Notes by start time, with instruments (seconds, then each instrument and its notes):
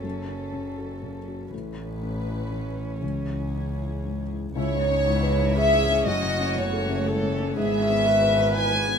Already playing: double bass F#1, cello F#3, viola C#4, felt piano F#4, violin section A4
0.04 felt piano F#2
0.28 felt piano C#4
0.53 felt piano C#3
0.78 felt piano F#4
1.03 felt piano C#3
1.28 felt piano F#4
1.52 double bass A1, felt piano A2, cello E3, viola C#4, violin section B4
1.77 felt piano E4
2.03 felt piano C#4
2.27 felt piano E4
2.51 felt piano E3
2.77 felt piano E4
3.02 double bass C#2, felt piano C#2, violin section G#4
3.28 felt piano E4
3.54 felt piano C#4
3.79 felt piano E4
4.05 felt piano G#2
4.30 felt piano E4
4.56 double bass C#2, felt piano C#2, string section E3 B3 C#5, cello E4, violin section C#5
4.74 felt piano G#2
4.82 cello D#4
4.90 felt piano C#4
5.07 felt piano G#2, viola E4
5.23 felt piano B4
5.40 felt piano G#2
5.56 cello C#4, felt piano E4, viola G#4, violin section E5
5.74 felt piano G#2
5.90 felt piano C#4
6.06 double bass F#1, felt piano F#2, string section A3, viola F#4, violin section D#5
6.23 felt piano C#3
6.39 felt piano C#4
6.55 felt piano C#3, cello B3, violin section C#5
6.73 felt piano A4
6.80 cello A3
6.89 felt piano C#3
7.06 cello G#3, felt piano E4, viola A4
7.23 felt piano C#3
7.32 cello A3
7.40 felt piano C#4
7.55 double bass G#1, felt piano G#2, string section G#3 B4, cello B3, viola G#4, violin section E5
7.73 felt piano G#3
7.81 cello C#4
7.90 felt piano B3
8.06 felt piano G#3, viola B4
8.22 felt piano B4
8.38 felt piano G#3
8.55 cello B3, felt piano E4, violin section G#5
8.72 felt piano G#3
8.79 cello B3
8.88 felt piano B3